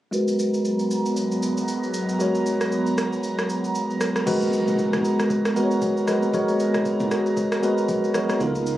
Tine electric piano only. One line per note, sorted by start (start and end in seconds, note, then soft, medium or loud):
0.11 2.15 G#3 medium
0.11 2.16 F#4 medium
0.11 2.16 A#4 medium
0.11 2.17 B4 medium
2.18 4.22 G#3 medium
2.18 4.22 F#4 medium
2.18 4.23 A#4 medium
2.18 4.23 C#5 medium
4.26 5.10 G#3 medium
4.26 5.10 F#4 medium
4.26 5.10 A#4 medium
4.26 5.11 B4 medium
5.55 5.99 G#3 medium
5.55 5.99 F#4 medium
5.55 5.99 A#4 medium
5.55 5.64 B4 medium
5.63 6.03 C#5 medium
6.07 6.29 G#3 medium
6.07 6.29 F#4 medium
6.07 6.29 A#4 medium
6.07 6.30 B4 medium
6.33 7.17 G#3 medium
6.33 7.17 F#4 medium
6.33 7.17 A#4 medium
6.33 7.18 C#5 loud
7.62 8.06 G#3 medium
7.62 8.06 F#4 medium
7.62 8.06 A#4 medium
7.62 8.06 B4 medium
8.14 8.36 G#3 medium
8.14 8.36 F#4 medium
8.14 8.36 A#4 medium
8.14 8.37 C#5 medium
8.40 8.78 C#3 medium
8.40 8.78 B3 medium
8.40 8.78 D#4 medium
8.40 8.78 F4 medium
8.40 8.48 A4 medium
8.47 8.78 A#4 medium